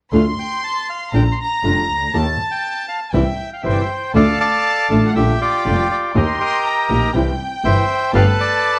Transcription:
0.13 double bass D2, nylon-string guitar D3 A3 D4 F4, bandoneon F5, violin section C6
0.40 bandoneon G5
0.64 bandoneon A5
0.90 bandoneon F5
1.13 double bass A#1, nylon-string guitar D3 G3 D4 F4, bandoneon G5, violin section A#5
1.32 bandoneon C6
1.40 bandoneon A#5
1.63 double bass F1, nylon-string guitar D3 G3 D4 F4
1.88 double bass C#2
2.13 double bass D#2, nylon-string guitar D#3 A#3 D#4 G4, violin section A5, bandoneon A5
2.51 bandoneon G5
2.89 bandoneon F5
3.12 double bass C2, nylon-string guitar C3 E3 G3 C4 E4, bandoneon E5, violin section G5
3.53 bandoneon F5
3.62 double bass G1, nylon-string guitar C3 E3 G3 C4 E4, bandoneon C5 E5 G5
3.72 bandoneon D5
3.81 bandoneon E5
4.14 double bass D2, nylon-string guitar D3 A3 D4 F4, string section A3 D4 F4, bandoneon A4 D5 F5, violin section A5
4.40 bandoneon D5 F5 A5
4.89 double bass A1, nylon-string guitar D3 A3 D4 F4, string section A3 D4 F4, bandoneon F5
5.07 violin section F#5
5.15 double bass A#1, nylon-string guitar D3 G3 D4 F4, string section A#3 D4 G4, bandoneon G4 E5, violin section G5
5.41 bandoneon F4 G4 D5
5.65 double bass F1, nylon-string guitar D3 G3 D4 F4, string section A#3 D4 G4
5.91 bandoneon D5
6.14 double bass D#2, nylon-string guitar D#3 A#3 D#4 G4, string section A#3 D#4 G4, bandoneon G4 A#4 D#5, violin section C6
6.40 bandoneon A#4 D#5 G5
6.65 violin section A#5
6.89 double bass A#1, nylon-string guitar D#3 A#3 D#4 G4, string section A#3 D#4 G4
7.14 double bass C2, nylon-string guitar C3 E3 G3 C4 E4, string section C4 E4 G4, violin section G5
7.64 double bass G1, nylon-string guitar C3 E3 G3 C4 E4, string section C4 E4 G4, bandoneon C5 E5 G5
8.13 double bass G1, nylon-string guitar D3 G3 B3 G4, string section A3 B3 G4, bandoneon A4 B4 F5, violin section A5
8.40 bandoneon D5 A5

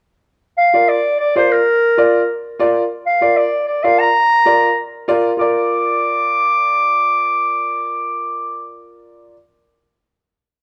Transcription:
0.57 clarinet F5
0.73 upright piano F4 A#4 D5
0.89 clarinet D5
1.20 clarinet D5
1.36 upright piano F4 A#4 D5, clarinet C5
1.51 clarinet A#4
1.97 upright piano F4 A#4 D5
2.59 upright piano F4 A#4 D5
3.06 clarinet F5
3.21 upright piano F4 A#4 D5
3.37 clarinet D5
3.68 clarinet D5
3.83 upright piano F4 A#4 D5, clarinet F5
3.99 clarinet A#5
4.46 upright piano F4 A#4 D5
5.08 upright piano F4 A#4 D5
5.37 upright piano F4 A#4, clarinet D6
5.41 upright piano D5

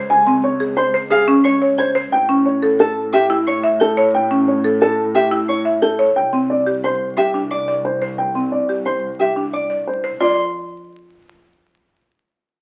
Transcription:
Already playing: double bass section C#2, marimba C5
0.10 grand piano G#5
0.27 marimba C4
0.44 grand piano C#5
0.60 marimba G#4
0.77 grand piano C5, violin C6
0.94 marimba C5
1.10 grand piano G#4, violin F5
1.28 marimba C#4
1.44 grand piano C#5, violin C#6
1.62 marimba C#5
1.78 grand piano C5, violin G#6
1.95 marimba C5
2.12 double bass section A2, grand piano G5
2.29 marimba C#4
2.46 grand piano C#5
2.62 marimba A4
2.79 grand piano A4, violin A5
3.13 grand piano G4, violin E5
3.30 marimba E4
3.47 grand piano C#5, violin C#6
3.64 marimba E5
3.80 grand piano A4, violin G6
3.97 marimba C#5
4.14 grand piano G5
4.31 marimba C#4
4.48 grand piano C#5
4.64 marimba A4
4.81 grand piano A4, violin A5
5.15 grand piano G4, violin E5
5.31 marimba E4
5.48 grand piano C#5, violin C#6
5.65 marimba E5
5.82 grand piano A4, violin G6
5.99 marimba C#5
6.16 double bass section C2, grand piano G5
6.33 marimba C4
6.50 grand piano D5
6.67 marimba G4
6.84 grand piano C5, violin C6
7.17 grand piano G4, violin E5
7.34 marimba D4
7.51 grand piano D5, violin D6
7.68 marimba D5
7.85 grand piano C5
8.02 marimba C5
8.18 grand piano G5
8.35 marimba C4
8.52 grand piano D5
8.69 marimba G4
8.86 grand piano C5, violin C6
9.20 grand piano G4, violin E5
9.36 marimba D4
9.53 grand piano D5, violin D6
9.70 marimba D5
9.87 grand piano C5
10.04 marimba C5
10.20 double bass section F2, marimba F4, grand piano D5, violin C6

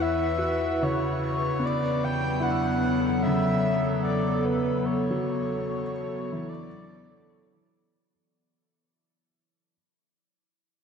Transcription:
Already playing: double bass section E2, ambient pad E4 B4 F#5
0.02 soft synth lead E5
0.38 felt piano F#4
0.82 felt piano C#3, soft synth lead C#5
1.22 soft synth lead C#5
1.59 double bass section E2, felt piano B3, ambient pad B3
1.65 soft synth lead D5
1.97 ambient pad F#3
2.04 soft synth lead G5
2.40 felt piano E4, soft synth lead F#5
2.44 felt piano D4
2.50 felt piano E6
2.62 ambient pad A4
3.23 felt piano C#3, soft synth lead E5
4.03 soft synth lead D5
4.45 soft synth lead B4
4.85 soft synth lead C#5
5.11 felt piano F#3
6.32 felt piano E3
6.49 soft synth lead D5

